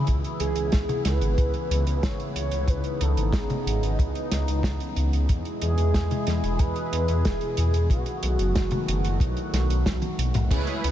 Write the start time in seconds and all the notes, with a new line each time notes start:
Already playing: E3 E4
0.07 C#2 C#3 B3, kick, closed hi-hat
0.24 closed hi-hat
0.40 C#2 G#4, closed hi-hat
0.56 C#2, closed hi-hat
0.72 C#2, kick, snare, closed hi-hat
0.89 closed hi-hat, mid tom
1.05 C#2 B4, snare, closed hi-hat
1.21 G#1, closed hi-hat
1.38 C#2, kick, closed hi-hat
1.54 closed hi-hat
1.70 C#2, closed hi-hat
1.87 C#2, closed hi-hat
2.03 G#1 C#5, kick, snare, closed hi-hat
2.20 closed hi-hat
2.36 C#2 C#5, closed hi-hat
2.51 C#2, closed hi-hat
2.68 C#2 D#4 B4, kick, closed hi-hat
2.84 closed hi-hat
3.01 C#2 A4, closed hi-hat
3.17 G#1, closed hi-hat
3.33 G#1 G#4, kick, snare, closed hi-hat
3.50 closed hi-hat, mid tom
3.66 G#1, closed hi-hat
3.83 G#1, closed hi-hat
3.99 C#2, kick, closed hi-hat
4.15 closed hi-hat
4.31 C#2, snare, closed hi-hat
4.48 C#2, closed hi-hat
4.63 C#2, kick, snare, closed hi-hat
4.80 closed hi-hat
4.96 C#2, closed hi-hat
5.13 C#2, closed hi-hat
5.29 E2 B2 E3 G#3 E4 G#4, kick, closed hi-hat
5.45 closed hi-hat
5.62 E2 G#4, closed hi-hat
5.78 E2, closed hi-hat
5.94 E2, kick, snare, closed hi-hat
6.11 closed hi-hat, mid tom
6.27 E2, snare, closed hi-hat
6.43 E1, closed hi-hat
6.59 E2 B4, kick, closed hi-hat
6.76 closed hi-hat
6.92 E2, closed hi-hat
7.08 E2, closed hi-hat
7.25 E1 G#4, kick, snare, closed hi-hat
7.41 closed hi-hat
7.57 E2, closed hi-hat
7.74 E2, closed hi-hat
7.90 B1 D#3 F#3 A3 B3 F#4, kick, closed hi-hat
8.06 closed hi-hat
8.23 B1, closed hi-hat
8.39 F#1, closed hi-hat
8.55 F#1, kick, snare, closed hi-hat
8.71 closed hi-hat, mid tom
8.88 F#1, closed hi-hat
9.04 F#1, closed hi-hat
9.15 E4
9.20 B1, kick, closed hi-hat
9.37 closed hi-hat
9.53 B1, snare, closed hi-hat
9.69 B1, closed hi-hat
9.86 B1, kick, snare, closed hi-hat, high tom
10.02 closed hi-hat, high tom
10.18 B1, closed hi-hat
10.34 B1, closed hi-hat, mid tom
10.51 C#2 C#3 E3 G#3 B3 C#4 E4 G#4 B4, kick, closed hi-hat, crash
10.67 closed hi-hat
10.84 C#2, closed hi-hat